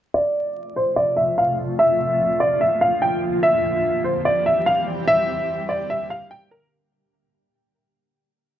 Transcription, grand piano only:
0.14 D5
0.76 C5
0.96 D5
1.17 E5
1.38 F5
1.79 E5
2.40 D5
2.61 E5
2.81 F5
3.02 G5
3.43 E5
4.04 C5
4.25 D5
4.46 E5
4.66 F5
5.08 E5
5.69 D5
5.90 E5
6.10 F5
6.31 G5
6.51 A#4

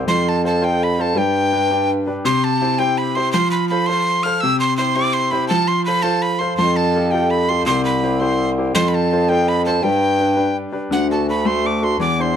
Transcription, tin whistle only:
0.08 C6
0.29 A5
0.46 A5
0.64 G5
0.83 B5
1.01 A5
1.18 G5
2.25 C6
2.44 A5
2.79 G5
2.98 B5
3.15 C6
3.32 C6
3.51 B5
3.69 B5
3.86 C6
4.23 F6
4.41 E6
4.60 C6
4.77 C6
4.96 D6
5.13 C6
5.31 B5
5.48 A5
5.68 C6
5.85 B5
6.02 A5
6.22 B5
6.39 C6
6.57 C6
6.76 A5
7.11 G5
7.30 B5
7.49 C6
7.66 C6
7.85 B5
8.20 C6
8.75 C6
8.88 B5
8.94 A5
9.29 G5
9.48 B5
9.65 A5
9.83 G5
10.92 F#5
11.11 A5
11.29 B5
11.47 C6
11.66 D6
11.84 C6
12.01 D6
12.21 C6

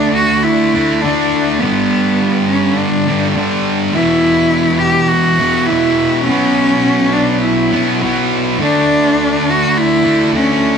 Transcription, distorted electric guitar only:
Already playing: D3 A3 D4
0.75 D3 A3 D4
1.04 D3 A3 D4
1.61 G2 D3
1.65 G3
3.07 D3 G3
3.11 G2
3.35 G2 D3 G3
3.93 E2 B2
3.97 E3
5.39 E2 B2 E3
5.70 E2 B2 E3
6.27 B2 F#3 B3
7.73 F#3 B3
7.77 B2
8.02 B2 F#3 B3
8.59 D3 A3 D4
10.04 D3 A3 D4
10.33 D3 A3 D4

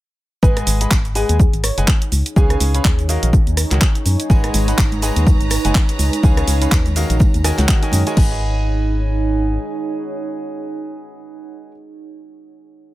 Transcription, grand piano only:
0.43 G#3 G#4 B4 D#5 F#5 G#5
0.81 G#3 G#4 B4 D#5 F#5 B5
1.15 G#3 G#4 B4 D#5 F#5 G#5
1.78 G#3 G#4 B4 D#5 F#5 G#5
2.36 C#4 G#4 B4 C#5 F5 G#5
2.74 C#4 G#4 B4 C#5 F5 B5
3.09 D#3 F#4 A#4 C#5 D#5 F5
3.71 D#3 F#4 A#4 C#5 D#5 F#5
4.30 G#3 G#4 B4 D#5 F#5 G#5
4.68 G#3 G#4 B4 D#5 F#5 B5
5.02 G#3 G#4 B4 D#5 F#5 G#5
5.65 G#3 G#4 B4 D#5 F#5 G#5
6.23 C#4 G#4 B4 C#5 F5 G#5
6.62 C#4 G#4 B4 C#5 F5 B5
6.96 D#3 F#4 A#4 C#5 D#5 F5
7.44 D#3 F#4 A#4 C#5 D#5 G#5
7.58 D#3 F#4 A#4 C#5 D#5 F#5
7.69 D#3 F#4 F#5
7.83 D#3 F#4 A#4 C#5 D#5 G#5
8.07 G#3 F#4 A#4 C#5 D#5 G#5
8.17 G#4 B4 D#5 F#5

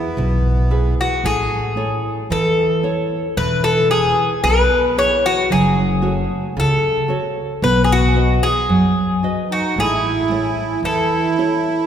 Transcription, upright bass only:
0.17 B1
1.24 A1
2.30 E2
3.37 E1
4.44 B1
5.50 F#1
6.57 C#2
7.62 B1
8.69 F#2
9.76 A1
10.83 E2

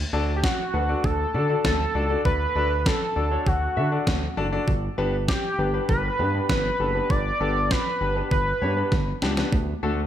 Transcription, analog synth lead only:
0.36 G4
0.43 F#4
1.04 A4
1.65 A4
2.25 B4
2.86 A4
3.47 F#4
5.28 G4
5.89 B4
6.50 B4
7.10 D5
7.71 B4
8.32 B4

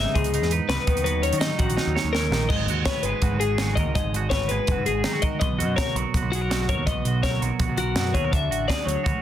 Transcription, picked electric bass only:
0.16 C#2
0.42 E2
0.69 C#2
0.88 D#2
1.33 D#3
1.60 A#1
1.87 D#2
2.04 D#2
2.31 A#1
2.50 G#1
2.66 D#2
3.03 G#1
3.22 G#1
3.31 G#1
3.77 D#2
3.86 C#2
3.95 G#1
4.14 G#1
4.51 G#1
4.68 F#1
4.78 G#2
4.87 G#1
5.42 B1
5.59 F#2
5.95 B1
6.14 B1
6.22 B1
6.69 F#2
6.77 D#2
6.87 B1
7.05 B1
7.42 B1
7.60 A#1
7.69 B2
7.77 B1
7.95 F#2
8.14 D#2
8.33 D2
8.50 A1
8.87 D2
9.06 D2
9.14 D2

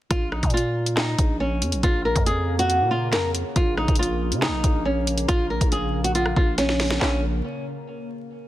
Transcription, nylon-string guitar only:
0.11 F4
0.32 D#4
0.54 F4
0.97 D#4
1.40 C#4
1.84 F4
2.05 A#4
2.26 G#4
2.59 F#4
2.91 F4
3.12 A#4
3.56 F4
3.78 D#4
3.99 F4
4.42 D#4
4.85 C#4
5.28 F4
5.50 A#4
5.72 G#4
6.04 F#4
6.15 F4
6.37 F4
6.58 C#4
7.01 C#4

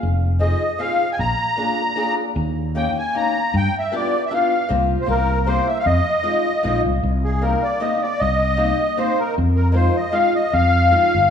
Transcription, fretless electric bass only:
0.03 F1
1.19 A#1
2.36 D#2
3.54 G2
4.70 C2
5.08 C2
5.86 F2
6.65 A#1
6.85 C2
7.03 C2
8.21 C2
9.38 F2
10.53 F2
11.14 G1

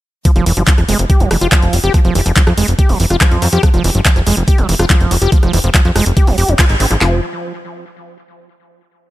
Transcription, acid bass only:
0.25 F3
0.36 F3
0.46 E3
0.57 F3
0.67 F3
0.78 F3
0.89 G#3
1.10 G4
1.20 F3
1.31 E3
1.41 F4
1.52 F3
1.73 G3
1.84 G4
1.94 F3
2.05 F3
2.15 E3
2.26 F3
2.36 F3
2.47 F3
2.58 G#3
2.79 G4
2.89 F3
3.00 E3
3.10 F4
3.21 F3
3.42 G3
3.53 G4
3.63 F3
3.74 F3
3.84 E3
3.95 F3
4.05 F3
4.16 F3
4.27 G#3
4.48 G4
4.58 F3
4.69 E3
4.79 F4
4.90 F3
5.11 G3
5.22 G4
5.32 F3
5.43 F3
5.53 E3
5.64 F3
5.74 F3
5.85 F3
5.96 G#3
6.17 G4
6.27 F3
6.38 G4
6.48 C4
6.59 F4
6.80 C4
6.91 F3
7.01 F3

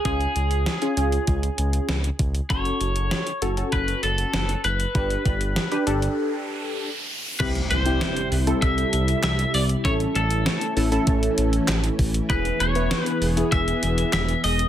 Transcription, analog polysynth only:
0.05 C#4 F4 G#4
0.82 C#4 F4 G#4
0.97 C#4 F4 G#4
2.50 C#4 F#4 A4
3.42 C#4 F#4 A4
3.57 C#4 F#4 A4
4.95 D4 G4 B4
5.71 D4 G4 B4
5.87 D4 G4 A4
7.40 C4 E4 G4
7.86 C4 E4 G4
8.47 C4 E4 A4
9.85 C#4 E4 A4
10.77 C#4 E4 A4
10.92 C#4 E4 A4
12.30 B3 E4 G#4
12.76 B3 E4 B4
13.37 B3 E4 G#4

